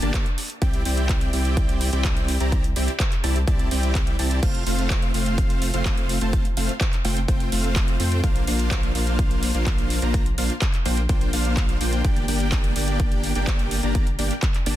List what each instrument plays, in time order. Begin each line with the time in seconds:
0.02 sub bass G1, supersaw synth A#3 D4 G4 D5 A5, closed hi-hat
0.14 kick, clap, closed hi-hat
0.26 closed hi-hat
0.38 open hi-hat
0.50 closed hi-hat
0.62 sub bass C2, supersaw synth C4 E4 G4 D5 G5, kick, closed hi-hat
0.73 closed hi-hat
0.85 sub bass C2, supersaw synth C4 E4 G4 D5 G5, open hi-hat
0.97 closed hi-hat
1.09 kick, clap, closed hi-hat
1.21 closed hi-hat
1.33 sub bass C2, supersaw synth C4 E4 G4 D5 G5, open hi-hat
1.45 closed hi-hat
1.57 kick, closed hi-hat
1.69 closed hi-hat
1.81 open hi-hat
1.93 sub bass C2, supersaw synth C4 E4 G4 D5 G5, closed hi-hat
2.05 kick, clap, closed hi-hat
2.17 closed hi-hat
2.28 open hi-hat
2.40 sub bass C2, supersaw synth C4 E4 G4 D5 A#5, closed hi-hat
2.52 kick, closed hi-hat
2.64 closed hi-hat
2.76 sub bass C2, supersaw synth C4 E4 G4 D5 G5, open hi-hat
2.88 closed hi-hat
3.00 kick, clap, closed hi-hat
3.12 clap, closed hi-hat
3.24 sub bass C2, supersaw synth C4 E4 G4 D5 A5, open hi-hat
3.36 closed hi-hat
3.48 sub bass C2, supersaw synth C4 E4 G4 D5 A5, kick, closed hi-hat
3.59 closed hi-hat
3.71 sub bass C2, supersaw synth C4 E4 G4 D5 G5, open hi-hat
3.83 closed hi-hat
3.95 kick, clap, closed hi-hat
4.07 closed hi-hat
4.19 sub bass C2, supersaw synth C4 E4 G4 D5 A5, open hi-hat
4.31 closed hi-hat
4.43 sub bass F1, supersaw synth A3 C4 F4 C5 F5, kick, closed hi-hat, crash
4.55 closed hi-hat
4.66 sub bass F1, supersaw synth A3 C4 F4 C5 F5, open hi-hat
4.79 closed hi-hat
4.90 kick, clap, closed hi-hat
5.02 closed hi-hat
5.14 sub bass F1, supersaw synth A3 C4 F4 C5 F5, open hi-hat
5.26 closed hi-hat
5.38 kick, closed hi-hat
5.50 closed hi-hat
5.62 open hi-hat
5.73 sub bass F1, supersaw synth A3 C4 F4 C5 F5, closed hi-hat
5.85 kick, clap, closed hi-hat
5.98 closed hi-hat
6.09 open hi-hat
6.21 sub bass F1, supersaw synth A3 C4 F4 C5 A5, closed hi-hat
6.33 kick, closed hi-hat
6.45 closed hi-hat
6.57 sub bass F1, supersaw synth A3 C4 F4 C5 F5, open hi-hat
6.69 closed hi-hat
6.81 kick, clap, closed hi-hat
6.93 clap, closed hi-hat
7.04 sub bass F1, supersaw synth A3 C4 F4 C5 G5, open hi-hat
7.17 closed hi-hat
7.28 sub bass F1, supersaw synth A3 C4 F4 C5 G5, kick, closed hi-hat
7.40 closed hi-hat
7.52 sub bass F1, supersaw synth A3 C4 F4 C5 F5, open hi-hat
7.64 closed hi-hat
7.76 kick, clap, closed hi-hat
7.88 closed hi-hat
8.00 sub bass F2, supersaw synth A3 C4 F4 C5 G5, open hi-hat
8.12 closed hi-hat
8.24 sub bass A#1, supersaw synth A#3 D4 F4 C5 F5, kick, closed hi-hat
8.36 closed hi-hat
8.47 sub bass A#1, supersaw synth A#3 D4 F4 C5 F5, open hi-hat
8.59 closed hi-hat
8.71 kick, clap, closed hi-hat
8.83 closed hi-hat
8.95 sub bass A#1, supersaw synth A#3 D4 F4 C5 F5, open hi-hat
9.07 closed hi-hat
9.19 kick, closed hi-hat
9.31 closed hi-hat
9.43 open hi-hat
9.54 sub bass A#1, supersaw synth A#3 D4 F4 C5 F5, closed hi-hat
9.66 kick, clap, closed hi-hat
9.78 closed hi-hat
9.90 open hi-hat
10.02 sub bass A#1, supersaw synth A#3 D4 F4 C5 A#5, closed hi-hat
10.14 kick, closed hi-hat
10.26 closed hi-hat
10.38 sub bass A#1, supersaw synth A#3 D4 F4 C5 F5, open hi-hat
10.50 closed hi-hat
10.62 kick, clap, closed hi-hat
10.74 clap, closed hi-hat
10.86 sub bass A#1, supersaw synth A#3 D4 F4 C5 G5, open hi-hat
10.97 closed hi-hat
11.09 sub bass A#1, supersaw synth A#3 D4 F4 C5 G5, kick, closed hi-hat
11.21 closed hi-hat
11.33 sub bass A#1, supersaw synth A#3 D4 F4 C5 F5, open hi-hat
11.45 closed hi-hat
11.57 kick, clap, closed hi-hat
11.69 closed hi-hat
11.81 sub bass A#1, supersaw synth A#3 D4 F4 C5 G5, open hi-hat
11.93 closed hi-hat
12.05 sub bass G1, supersaw synth D4 G4 D5 G5, kick, closed hi-hat
12.16 closed hi-hat
12.28 sub bass G1, supersaw synth A#3 D4 G4 D5 G5, open hi-hat
12.40 closed hi-hat
12.52 kick, clap, closed hi-hat
12.64 closed hi-hat
12.76 sub bass G1, supersaw synth A#3 D4 G4 D5 G5, open hi-hat
12.88 closed hi-hat
13.00 kick, closed hi-hat
13.12 closed hi-hat
13.24 open hi-hat
13.35 sub bass G1, supersaw synth A#3 D4 G4 D5 G5, closed hi-hat
13.47 kick, clap, closed hi-hat
13.59 closed hi-hat
13.71 open hi-hat
13.83 sub bass G1, supersaw synth A#3 D4 G4 D5 A#5, closed hi-hat
13.95 kick, closed hi-hat
14.07 closed hi-hat
14.19 sub bass G1, supersaw synth A#3 D4 G4 D5 G5, open hi-hat
14.31 closed hi-hat
14.42 kick, clap, closed hi-hat
14.54 clap, closed hi-hat
14.66 sub bass G1, supersaw synth A#3 D4 G4 D5 A5, open hi-hat